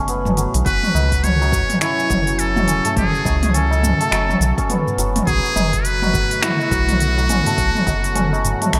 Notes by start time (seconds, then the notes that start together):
Already playing: F#1 D3 F#3 A3 B3 C#4 E4
0.08 B3, open hi-hat, shaker
0.25 mid tom, tabla ge, shaker
0.37 F#3, open hi-hat, shaker
0.54 B1, open hi-hat, shaker
0.66 F#1 F#3 C#4 B4 G#5, kick, open hi-hat, shaker
0.83 mid tom, shaker
0.94 C#2, tabla na, tabla tin, shaker
1.12 kick, open hi-hat, shaker
1.24 C#5, mid tom, open hi-hat, shaker
1.41 F#3, tabla na, shaker
1.52 F#3, kick, tabla ge, shaker
1.70 mid tom, open hi-hat, tabla tin, shaker
1.81 E4 C#5, finger snap, open hi-hat, shaker
1.98 tabla tin, shaker
2.10 F#1 F#3, kick, mid tom, open hi-hat, tabla tin, shaker
2.27 open hi-hat, shaker
2.39 A4, open hi-hat, shaker
2.56 F#3, mid tom, tabla tin, shaker
2.68 E1 C#4, open hi-hat, shaker
2.85 A3, open hi-hat, tabla ge, shaker
2.96 F#1 G#4, kick, mid tom, open hi-hat, shaker
3.15 shaker
3.25 C#2 F#3, kick, tabla na, tabla tin, shaker
3.43 mid tom, open hi-hat, shaker
3.54 C#4 A4, open hi-hat, shaker
3.71 tabla na, shaker
3.83 mid tom, tabla ge, shaker
4.00 A3, open hi-hat, tabla tin, shaker
4.11 F#1 F#3, finger snap, open hi-hat, tabla na, shaker
4.28 mid tom, tabla tin, shaker
4.40 B1, open hi-hat, shaker
4.58 C#4, kick, open hi-hat, tabla na, shaker
4.70 B3, mid tom, open hi-hat, shaker
4.87 tabla ge, shaker
4.98 F#1 F#3, open hi-hat, shaker
5.16 mid tom, open hi-hat, shaker
5.27 B1 D3 F#3 A3 B3 G#4, kick, open hi-hat, shaker
5.45 shaker
5.56 F#1, mid tom, tabla na, tabla tin, shaker
5.73 kick, open hi-hat, shaker
5.85 B4, open hi-hat, shaker
6.02 F#3, mid tom, tabla na, shaker
6.14 F#3, kick, tabla ge, shaker
6.31 open hi-hat, tabla tin, shaker
6.42 E4 F#4, finger snap, mid tom, open hi-hat, shaker
6.59 tabla tin, shaker
6.71 B1 F#3, kick, open hi-hat, shaker
6.89 mid tom, open hi-hat, shaker
7.00 open hi-hat, shaker
7.17 F#3, tabla tin, shaker
7.29 A1 C#4, mid tom, open hi-hat, shaker
7.46 A3, open hi-hat, tabla ge, shaker
7.58 B1, kick, open hi-hat, shaker
7.75 mid tom, shaker
7.86 F#1 F#3, kick, open hi-hat, tabla na, tabla tin, shaker
8.04 open hi-hat, shaker
8.15 C#4, mid tom, open hi-hat, shaker
8.33 tabla na, shaker
8.44 open hi-hat, tabla ge, shaker
8.62 A3, mid tom, open hi-hat, tabla tin, shaker
8.73 B1 F#3, finger snap, open hi-hat, tabla na, shaker